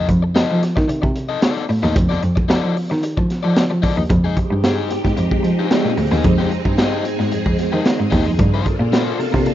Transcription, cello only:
0.09 F2
0.36 F3
0.51 F3
0.77 D#3
0.89 C3
1.03 C3
1.70 A2
1.83 D#2
1.96 F2
2.23 F2
2.50 F3
2.64 F3
2.91 D#3
3.18 F3
3.44 F3
3.71 F3
3.97 D#2
4.10 F2
4.51 G2
4.91 G#2
5.05 G#2
5.17 F2
5.43 F3
5.85 A#2
5.98 D2
6.12 D#2
6.25 F2
6.66 G2
7.05 G#2
7.19 G#2
7.32 F2
7.46 F2
7.73 D#3
8.00 G#2
8.13 D#2
8.27 F2
8.40 G2
8.80 A#2
9.19 C3
9.35 C3
9.46 A#2

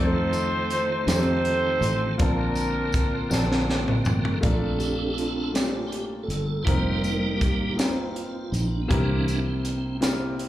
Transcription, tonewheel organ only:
Already playing: D#3 A3 C4 F4
2.18 D3 A#3 C4 A#4
4.44 C4 D4 A4
4.78 G4
5.14 F4
5.87 G4
6.23 A4
6.63 G3 A#3 D#4 C5
6.98 A#4
7.37 G4
7.74 F4
8.13 F4
8.52 D#4
8.67 D4
8.81 B3
8.88 E3 A#3 C4 D4

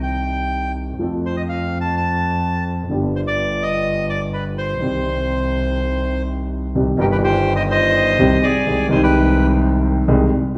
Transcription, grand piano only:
Already playing: C2 C3 D#3 G3 C4 G4
0.99 F2 F3 A3 C4 A4
2.89 G1 G2 D3 G3 B3
2.93 G4
4.79 C2 C3 D#3 G3 C4 G4
6.75 C2 C3 D#3 G3 C4 G4
6.97 G1 G2 D#3 G3 C4 G4
8.19 C2 C3 D#3 G3 C4 G4
8.66 C2 C3 D#3 G#3 C4 G#4
8.88 C2 C3 D#3 G#3 C4
8.92 D#4
10.08 C2 C3 D#3 G#3 C4 G#4

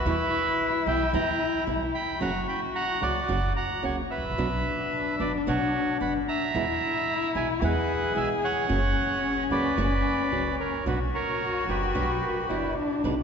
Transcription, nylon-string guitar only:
0.06 B2 E3 G3 B3 E4
0.86 B2 E3 G3 B3 E4
1.13 B2 E3 G3 B3 E4
1.67 B2 E3 G3 B3 E4
2.20 C#3 F#3 A#3 C#4 F#4
3.01 C#3 F#3 A#3 C#4 F#4
3.28 C#3 F#3 A#3 C#4 F#4
3.83 C#3 F#3 A#3 C#4 F#4
4.38 B2 F#3 B3 D4 F#4
5.20 B2 F#3 B3 D4 F#4
5.47 B2 F#3 B3 D4 F#4
6.00 B2 F#3 B3 D4 F#4
6.55 B2 E3 G#3 B3 E4
7.35 B2 E3 G#3 B3 E4
7.61 B2 E3 G#3 B3 E4
8.15 B2 E3 G#3 B3 E4
8.69 C#3 F#3 A#3 C#4 F#4
9.50 C#3 F#3 A#3 C#4 F#4
9.77 C#3 F#3 A#3 C#4 F#4
10.32 C#3 F#3 A#3 C#4 F#4
10.86 B2 F#3 B3 D4 F#4
11.68 B2 F#3 B3 D4 F#4
11.94 B2 F#3 B3 D4 F#4
12.50 B2 F#3 B3 D4 F#4
13.04 B2 C#3 F#3 B3 D#4 B4

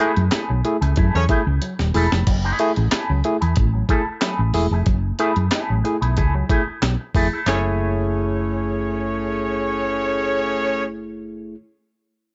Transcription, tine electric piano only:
0.00 A3 E4 G#4
0.33 E4 G#4
0.50 F#3
0.65 A3 E4 G#4
0.97 E4 G#4
1.14 F#3
1.29 A3 E4 G#4
1.62 F#3
1.94 A3 E4 G#4
2.12 E4 G#4
2.27 F#3
2.59 A3 E4 G#4
2.77 E4 G#4
2.92 E4 G#4
3.09 F#3
3.25 A3 E4 G#4
3.58 E4 G#4
3.75 F#3
3.90 A3 E4 G#4
4.22 F#3
4.54 A3 E4 G#4
4.72 E4 G#4
4.87 F#3
5.19 A3 E4 G#4
5.37 E4 G#4
5.53 E4 G#4
5.70 F#3
5.84 A3 E4 G#4
6.17 E4 G#4
6.35 F#3
6.50 A3 E4 G#4
6.83 F#3
7.15 A3 E4 G#4
7.33 E4 G#4
7.47 A3 E4 G#4

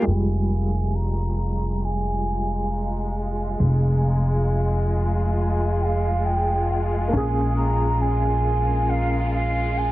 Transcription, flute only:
0.07 G#5
0.95 A#5
1.85 G#5
5.81 F5 G5
6.25 G5
6.70 G5
7.13 G#5
7.57 A#5
8.01 G#5
8.89 F5
9.34 F5
9.78 G#5

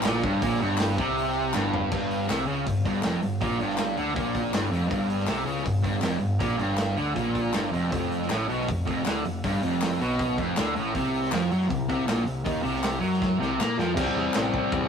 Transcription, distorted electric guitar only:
0.04 A#2
0.23 G2
0.42 A#2
0.60 G2
0.97 C3
1.53 G2
1.91 G2
2.28 C3
2.46 C#3
2.66 G2
2.85 G2
3.03 F2
3.23 G2
3.41 A#2
3.59 G2
3.96 D3
4.15 A#2
4.53 G2
4.71 F2
4.89 G2
5.26 C3
5.45 C#3
5.64 G2
5.82 G2
6.01 F2
6.20 G2
6.39 A#2
6.57 G2
6.96 D3
7.15 A#2
7.53 G2
7.72 F2
7.92 F2
8.30 A2
8.49 B2
8.68 F2
8.85 F2
9.04 D3
9.24 F2
9.44 G2
9.63 F2
10.00 B2
10.37 F2
10.57 D3
10.76 A2
10.95 C3
11.32 F3
11.52 F#3
11.69 C3
11.89 C3
12.07 A#2
12.26 C3
12.45 D#3
12.63 C3
13.00 F#3
13.39 C3
13.59 A#3
13.77 F3
13.95 C3 G3
14.00 C4

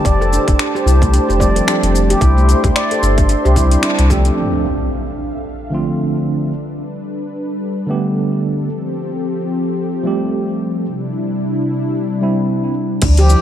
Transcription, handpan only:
0.06 D5
0.21 A4
0.33 D4
0.48 D4
0.60 D4
0.75 G4
0.86 E4
1.02 A3
1.13 D4
1.29 G4
1.40 D5
1.55 A4
1.67 D4
1.83 D4
1.94 D4
2.10 G4
2.21 E4
2.37 A3
2.49 D4
2.64 G4
2.76 D5
2.92 A4
3.02 D4
3.19 D4
3.30 D4
3.45 G4
3.57 E4
3.72 D4
3.83 D4
3.99 C4
4.11 G4
4.27 D4
13.03 D4
13.19 G4
13.30 E4

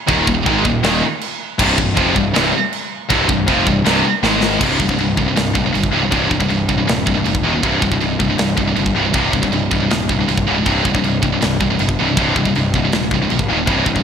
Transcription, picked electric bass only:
0.09 D#1
0.28 D#1
0.46 G#1
0.66 D#1
0.84 D#1
1.60 C1
1.78 C1
1.98 F1
2.16 C1
2.34 C1
3.10 C1
3.30 C1
3.48 F1
3.68 C1
3.84 C1
4.23 G#1
4.60 C1
4.80 C1
4.98 C1
5.18 C1
5.37 C1
5.55 C1
5.75 G1
5.94 C1
6.12 C1
6.31 C1
6.50 C1
6.69 C1
6.88 D#1
7.07 C1
7.26 F1
7.44 D#1
7.64 C1
7.83 C1
8.01 C1
8.20 C1
8.39 C1
8.58 C1
8.76 G1
8.95 C1
9.14 C1
9.34 C1
9.53 C1
9.71 C1
9.91 D#1
10.10 C1
10.28 C1
10.47 C#1
10.67 C1
10.85 C1
11.04 C1
11.23 C1
11.43 C1
11.61 C1
11.80 G1
11.99 C1
12.17 C1
12.36 C1
12.56 C1
12.74 C1
12.94 D#1
13.11 C1
13.32 A#1
13.50 D#1
13.68 C1
13.87 C1

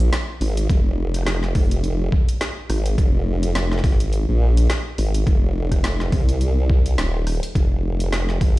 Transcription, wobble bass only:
Already playing: A#1
0.41 G#1
0.69 F1
1.55 F1
2.69 G#1
2.98 F1
3.84 G#1
4.29 A#1
4.98 G#1
5.27 F1
6.12 C2
6.98 D#1
7.55 F1
8.41 G#1

